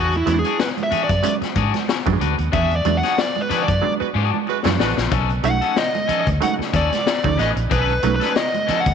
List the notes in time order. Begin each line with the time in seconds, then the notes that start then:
Already playing: E2 D4 F#4 G#4
0.12 closed hi-hat, muted conga
0.17 E4
0.26 E2 F#3 G#3 B3 C#4, muted clean electric guitar stroke, closed hi-hat, high conga
0.34 D4
0.39 G#4
0.44 D4 F#4 G#4, closed hi-hat
0.59 B4, snare
0.77 muted clean electric guitar stroke, closed hi-hat, muted conga, high conga
0.83 E5
0.91 D4 F#4 G#4, muted fingered electric bass stroke, closed hi-hat, low conga
1.04 D5
1.09 F#2, muted clean electric guitar stroke, kick, closed hi-hat
1.23 F#3 G#3 B3 C#4, muted clean electric guitar stroke, closed hi-hat, muted conga, high conga
1.42 muted clean electric guitar stroke, muted fingered electric bass stroke, snare, closed hi-hat, muted conga
1.55 G#2 D4 F#4 G#4, kick, closed hi-hat
1.74 muted clean electric guitar stroke, snare, closed hi-hat, high conga
1.88 muted clean electric guitar stroke, snare, muted conga
2.06 F#2 F#3 G3 B3 D4, kick, closed hi-hat, low conga
2.13 G#3
2.20 D2 D4 F#4 B4, closed hi-hat
2.38 D#2, muted clean electric guitar stroke, closed hi-hat
2.52 E2 D4 F#4 G#4 E5, kick, closed hi-hat, low conga
2.71 closed hi-hat, muted conga
2.76 D5
2.85 E2 F#3 G#3 B3 D4, muted clean electric guitar stroke, closed hi-hat, high conga
2.97 F#5
3.03 D4 F#4 G#4, snare, closed hi-hat
3.17 D5, snare, muted conga
3.35 muted clean electric guitar stroke, muted conga, high conga
3.42 B4
3.49 D4 F#4 G#4, muted fingered electric bass stroke, snare, closed hi-hat, low conga
3.62 D5
3.67 F#2, muted clean electric guitar stroke, kick, closed hi-hat
3.82 F#3 G#3 B3 D4, muted clean electric guitar stroke, muted conga, high conga
3.99 G#3 F#4 B4, muted clean electric guitar stroke, muted fingered electric bass stroke
4.14 G#2 D4 F#4 G#4
4.32 muted clean electric guitar stroke, high conga
4.47 G#3 F#4 B4, muted clean electric guitar stroke, muted conga
4.65 F#2 F#3 G#3 B3 D4, snare, muted conga, low conga
4.79 A1 G#3 D4 F#4 B4, snare
4.97 A#1, muted clean electric guitar stroke, snare
5.11 B1 C#4 D#4 A4, kick, closed hi-hat, muted conga
5.29 closed hi-hat, muted conga
5.43 B1 F#3 A3 C#4 D#4 F#5, muted clean electric guitar stroke, closed hi-hat, high conga
5.61 C#4 D#4 A4, closed hi-hat
5.76 D#5, snare, muted conga
5.94 muted clean electric guitar stroke, closed hi-hat, high conga
6.08 C#4 D#4 A4, muted fingered electric bass stroke, closed hi-hat, low conga
6.21 D#5
6.27 D2, muted clean electric guitar stroke, kick, closed hi-hat
6.40 C#3 F#3 A3 D#4 F#5, muted clean electric guitar stroke, closed hi-hat, muted conga, high conga
6.59 muted fingered electric bass stroke, muted clean electric guitar stroke, snare
6.73 D#2 C#4 D#4 A4 D5, kick, closed hi-hat
6.91 muted clean electric guitar stroke, snare, closed hi-hat, high conga
7.05 muted clean electric guitar stroke, snare, muted conga
7.24 D2 F#3 A3 C#4 D#4, kick, closed hi-hat, muted conga, low conga
7.37 A1 C#4 D#4 B4 D#5, snare, closed hi-hat
7.56 A#1, muted clean electric guitar stroke, closed hi-hat
7.70 B1 C#4 D#4 A4 B4, kick, closed hi-hat, muted conga
7.89 closed hi-hat, muted conga
8.03 B1 F#3 A3 C#4 D#4, muted clean electric guitar stroke, closed hi-hat, high conga
8.16 B4
8.20 C#4 D#4 A4, snare, closed hi-hat
8.36 D#5, snare
8.52 muted clean electric guitar stroke, closed hi-hat, muted conga, high conga
8.67 C#4 D#4 A4, muted fingered electric bass stroke, snare, closed hi-hat, low conga
8.80 F#5
8.85 D2, muted clean electric guitar stroke, kick, closed hi-hat